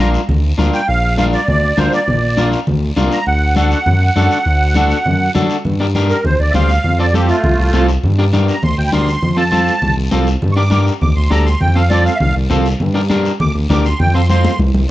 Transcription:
Already playing: A#1 A#5
0.00 D4 F4 A#4
0.14 short guiro
0.29 D2, high conga, low conga, long guiro
0.58 D2 D4 F4 A#4, high conga, short guiro
0.73 G5, short guiro
0.88 A#1 F5, high conga, long guiro
1.18 D4 F4 A#4 F5, high conga, short guiro
1.33 D5, short guiro
1.48 D2 D5, high conga, low conga, long guiro
1.77 D2 D4 F4 A#4 C5, high conga, low conga, short guiro
1.93 D5, short guiro
2.08 A#1, high conga, low conga, long guiro
2.37 D4 F4 A#4, high conga, short guiro
2.52 short guiro
2.67 D2, high conga, low conga, long guiro
2.96 C2 D4 F4 A#4, high conga, short guiro
3.12 A#5, short guiro
3.27 D2 F#5, high conga, long guiro
3.56 D4 F#4 A4 F#5, high conga, short guiro
3.71 F#5, short guiro
3.86 F#2, high conga, low conga, long guiro
4.16 F#2 D4 F#4 A4, high conga, short guiro
4.31 short guiro
4.45 D2, high conga, long guiro
4.75 D4 F#4 A4, high conga, short guiro
4.90 short guiro
5.05 F#2, high conga, low conga, long guiro
5.35 F#2 D4 F#4 A4, high conga, low conga, short guiro
5.50 short guiro
5.65 G2, high conga, low conga, long guiro
5.80 D4 G4 A#4
5.95 D4 G4 A#4, high conga, short guiro
6.10 A#4, short guiro
6.24 D2 C5, high conga, low conga, long guiro
6.39 D2 D5
6.51 D2 D4 E5, high conga, low conga
6.55 G4 C5 F5, short guiro
6.69 short guiro
6.84 F2, high conga, low conga, long guiro
6.99 C4 F4 A4 D5
7.14 C4 F4 G4 A4, high conga, short guiro
7.28 A3 F4, short guiro
7.44 C2, high conga, low conga, long guiro
7.59 C2
7.73 C2 C4 F4 A4, high conga, short guiro
7.88 short guiro
8.03 G2, high conga, low conga, long guiro
8.19 D4 G4 A#4
8.33 D4 G4 A#4, high conga, short guiro
8.48 A#5, short guiro
8.63 D2 C6, high conga, low conga, long guiro
8.78 D2 G5
8.88 B5, high conga
8.93 D2 D4 G4 A#4 C6, short guiro
9.08 short guiro
9.22 F2, high conga, low conga, long guiro
9.37 C4 F4 A4 A5
9.52 C4 F4 A4, high conga, short guiro
9.67 short guiro
9.82 C2, high conga, low conga, long guiro
9.97 C2
10.11 C2 C4 F4 A4, high conga, short guiro
10.27 short guiro
10.42 G2, high conga, low conga, long guiro
10.52 C#6
10.56 D4 G4 A#4 D6
10.70 D4 G4 A#4, high conga, short guiro
10.87 short guiro
11.01 D2 D6, high conga, low conga, long guiro
11.16 D2 C6
11.30 D2 D4 G4 A4 A#5, high conga, short guiro
11.46 C6, short guiro
11.60 F2 G5, high conga, low conga, long guiro
11.75 C4 F4 A4 F5
11.90 C4 F4 A4 D5, high conga, short guiro
12.05 F5, short guiro
12.16 E5
12.20 C2 F5, high conga, low conga, long guiro
12.36 C2
12.50 C2 C4 F4 A4, high conga, low conga, short guiro
12.66 short guiro
12.80 G2, high conga, low conga, long guiro
12.94 D4 G4 A#4
13.10 D4 G4 A#4, high conga, short guiro
13.25 short guiro
13.40 D2 D6, high conga, low conga, long guiro
13.55 D2
13.70 D2 D4 G4 A#4 D6, high conga, low conga, short guiro
13.85 C6, short guiro
13.99 F2 G5, high conga, low conga, long guiro
14.14 C4 F4 A4 C6
14.29 C4 F4 C5 C6, high conga, short guiro
14.44 high conga, short guiro
14.59 C2, high conga, long guiro
14.74 C2, high conga

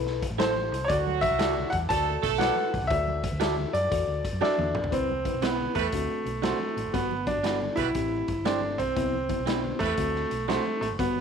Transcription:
Already playing: B1 E4 A4 B4
0.07 snare
0.22 kick, closed hi-hat, muted conga
0.30 A1
0.38 E4 A4 C5, snare, closed hi-hat, muted conga, high conga
0.55 high conga
0.72 C2, closed hi-hat
0.84 C#5 D5
0.89 D2 F#3 F#4 A4 D5, kick, closed hi-hat, muted conga, low conga
1.07 high conga
1.21 E5, kick, closed hi-hat, muted conga, high conga
1.31 C2
1.39 F#4 A4 D5, snare, closed hi-hat
1.57 high conga, low conga
1.70 E2 F#5, kick, closed hi-hat
1.89 D2 A3 F#4 A4 D5 A5, kick, closed hi-hat, muted conga
2.22 B1 A3 A4, kick, closed hi-hat, muted conga
2.38 F#4 A4 B4 D5 F#5, snare, closed hi-hat, high conga
2.56 high conga
2.74 A1, kick, open hi-hat, muted conga
2.82 C2
2.87 D2 F#4 A4 E5, kick, closed hi-hat, low conga
2.92 D5
3.07 high conga
3.23 kick, closed hi-hat, high conga
3.32 D2
3.40 F#4 A4 D5 E5, snare, closed hi-hat, muted conga
3.58 high conga, low conga
3.73 F#2 D5, closed hi-hat, muted conga
3.91 E2 F#4 A4 D5, kick, closed hi-hat
4.07 D2
4.25 kick, closed hi-hat
4.33 F#2
4.41 D4 F#4 A4 D5 E5, snare, muted conga, high conga
4.58 E2, high tom, high conga
4.75 A1, mid tom, muted conga
4.84 B1, floor tom
4.92 C2 C4 E4 B4, kick, closed hi-hat, low conga
5.10 high conga
5.25 C4 E4 B4, kick, closed hi-hat, muted conga, high conga
5.34 B1
5.42 B3 C4 E4 B4, snare, closed hi-hat, muted conga
5.61 low conga
5.75 E2 G3 A3 E4 B4, kick, closed hi-hat
5.92 D2 C4 D4 F#4, kick, closed hi-hat
6.25 B1, closed hi-hat, muted conga
6.42 A3 C4 D4 F#4 C5, snare, closed hi-hat, muted conga, high conga
6.60 high conga
6.77 A1, closed hi-hat
6.85 F#1
6.93 G1 G3 B3 F#4, kick, closed hi-hat, muted conga, low conga
7.11 high conga
7.27 G3 B3 D4 F#4, kick, closed hi-hat, muted conga, high conga
7.36 G1
7.43 G3 B3 D4 F#4 A4 B4, snare, closed hi-hat
7.62 low conga
7.76 B1 G3 E4 F#4 B4, kick, closed hi-hat
7.95 A1 A3 C4 G4, kick, closed hi-hat
8.28 G1, kick, closed hi-hat, muted conga
8.45 A3 C4 D4 E4 G4 A4 C5, snare, closed hi-hat, muted conga, high conga
8.61 high conga
8.78 B1 C4, kick, closed hi-hat, muted conga
8.96 C2 B3 C4 E4, kick, closed hi-hat, low conga
9.13 high conga
9.29 B3 C4 E4, kick, closed hi-hat, muted conga, high conga
9.39 B1
9.46 B3 C4 D4 E4 B4, snare, closed hi-hat
9.64 low conga
9.79 E2 G3 A3 E4 B4, kick, closed hi-hat
9.97 D2 C4 D4 F#4, kick, closed hi-hat, muted conga
10.15 snare
10.31 B1, closed hi-hat, muted conga
10.48 A3 C4 D4 F#4 A4 C5, snare, closed hi-hat, muted conga, high conga
10.65 high conga
10.81 A1 A3, closed hi-hat
10.90 F#1
10.99 G1 G3 B3 F#4, kick, closed hi-hat, muted conga, low conga
11.16 high conga

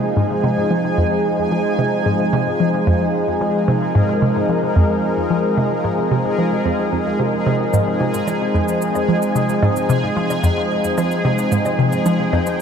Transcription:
Already playing: F3 G#3 C4 D#4 G#4 G#5
0.17 G#2
0.44 C3
0.71 F3
0.98 F2
1.52 F3
1.79 C3
2.06 G#2
2.33 C3
2.60 F3
2.87 F2
3.41 F3 A#4
3.68 C3
3.95 G#2
4.22 C3
4.49 F3
4.76 F2
5.30 F3
5.57 C3
5.84 G#2
6.11 C3
6.38 F3
6.65 F2
6.93 F2
7.20 C3
7.47 C3
7.74 G#2 G#5, cabasa
8.01 C3
8.14 cabasa
8.27 F3, cabasa, low woodblock
8.55 F2
8.68 cabasa
8.82 cabasa
8.95 cabasa, low woodblock
9.09 F3
9.22 cabasa
9.36 C3, cabasa
9.49 cabasa
9.63 G#2, low woodblock
9.76 cabasa
9.90 C3, cabasa
10.17 F3
10.30 cabasa, low woodblock
10.44 F2, cabasa
10.84 cabasa
10.98 F3, cabasa, low woodblock
11.11 cabasa
11.25 C3
11.38 cabasa
11.52 G#2, cabasa
11.65 cabasa, low woodblock
11.79 C3
11.92 cabasa
12.06 F3 G5, cabasa
12.33 F2, low woodblock
12.46 cabasa

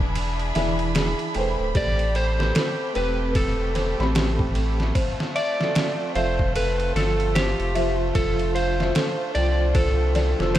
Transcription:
Already playing: E1 D4 E4 G#4 B4 D5 B5
0.15 ride
0.39 ride
0.55 E1 E3 E4 G#4 D5 E5, snare, ride
0.79 ride
0.95 G#4, snare, ride
1.19 ride
1.34 E1 A3 B4 C5 G5, ride
1.59 D1
1.75 A1 A3 C4 G4 D5, kick, ride
1.99 ride
2.15 C5, ride
2.39 A3 G4 B4 C5, snare
2.55 A4, snare, ride
2.94 E1 A3 C4 G4 B4, ride
3.35 A4, kick, ride
3.75 C5, snare, ride
3.98 A1 A3 C4 G4 B5, snare
4.15 G4, snare, ride
4.39 kick
4.55 ride
4.80 snare
4.95 C4 F4 C5, kick, ride
5.20 snare
5.35 D5 E5, ride
5.59 F3 F4 A4 D5, snare
5.75 snare, ride
6.15 F1 F3 F4 A4 C5 E5 F5, ride
6.39 kick
6.55 A4 B4, ride
6.80 ride
6.95 G1 F3 F4 A4 E6, snare, ride
7.20 ride
7.35 G4 C5, snare, ride
7.59 F1, ride
7.75 F3 F4 C5 E5, ride
8.15 F1 D4 A4 C5, kick, ride
8.39 ride
8.55 C5 F5, ride
8.79 F3 F4 C5 E5, snare
8.95 A4, snare, ride
9.34 C2 F3 F4 C5 D5 G5, ride
9.75 A4 C5, kick, ride
10.15 D5, snare, ride
10.39 F1 F3 F4 C5 E6, snare
10.54 C5, snare, ride

